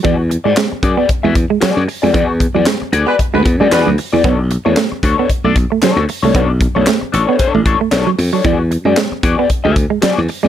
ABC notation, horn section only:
X:1
M:4/4
L:1/16
Q:"Swing 16ths" 1/4=114
K:Emix
V:1 name="Horn section"
z16 | z6 z [G,FB] z [G,FB] z2 [G,FB]2 z2 | z16 | z16 |
z16 |]